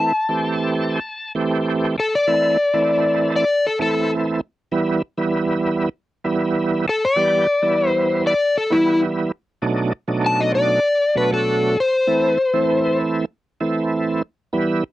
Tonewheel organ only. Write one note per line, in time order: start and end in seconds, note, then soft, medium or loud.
0.00 0.13 E3 medium
0.00 0.12 A3 medium
0.00 0.13 C4 medium
0.00 0.13 E4 medium
0.29 1.00 E3 medium
0.29 1.00 A3 medium
0.29 1.00 C4 medium
0.29 1.00 G4 medium
1.35 1.96 E3 medium
1.35 1.96 A3 medium
1.35 1.96 C4 medium
1.35 1.96 G4 loud
2.27 2.57 E3 medium
2.27 2.58 A3 medium
2.27 2.58 C4 medium
2.27 2.57 E4 medium
2.74 3.45 E3 medium
2.74 3.44 A3 medium
2.74 3.45 C4 medium
2.74 3.45 E4 medium
3.79 4.41 E3 medium
3.79 4.41 A3 medium
3.79 4.41 C4 medium
3.79 4.41 E4 medium
4.72 5.02 E3 medium
4.72 5.02 G3 medium
4.72 5.02 B3 medium
4.72 5.02 E4 medium
5.18 5.89 E3 medium
5.18 5.89 G3 medium
5.18 5.89 B3 medium
5.18 5.89 E4 medium
6.24 6.86 E3 medium
6.24 6.86 G3 medium
6.24 6.86 B3 medium
6.24 6.86 E4 medium
7.16 7.47 E3 medium
7.16 7.47 G3 medium
7.16 7.47 B3 medium
7.16 7.47 G4 medium
7.62 8.34 E3 medium
7.62 8.34 G3 medium
7.62 8.34 B3 medium
7.62 8.34 E4 medium
8.70 9.32 E3 medium
8.70 9.32 G3 medium
8.70 9.32 B3 medium
8.70 9.32 E4 medium
9.62 9.93 B2 medium
9.62 9.93 F#3 medium
9.62 9.93 A3 medium
9.62 9.93 D4 medium
9.62 9.93 D#4 medium
10.08 10.80 B2 medium
10.08 10.80 F#3 medium
10.08 10.80 A3 medium
10.08 10.80 D4 medium
10.08 10.80 D#4 medium
11.15 11.77 B2 medium
11.15 11.77 F#3 medium
11.15 11.77 A3 medium
11.15 11.77 D4 medium
11.15 11.77 F#4 medium
12.07 12.38 E3 medium
12.07 12.38 A3 medium
12.07 12.38 C4 medium
12.07 12.38 E4 medium
12.53 13.25 E3 medium
12.53 13.25 A3 medium
12.53 13.25 C4 medium
12.53 13.25 E4 medium
13.60 14.22 E3 medium
13.60 14.22 A3 medium
13.60 14.23 C4 medium
13.60 14.22 E4 medium
14.53 14.84 E3 medium
14.53 14.84 G3 medium
14.53 14.84 B3 medium
14.53 14.84 E4 loud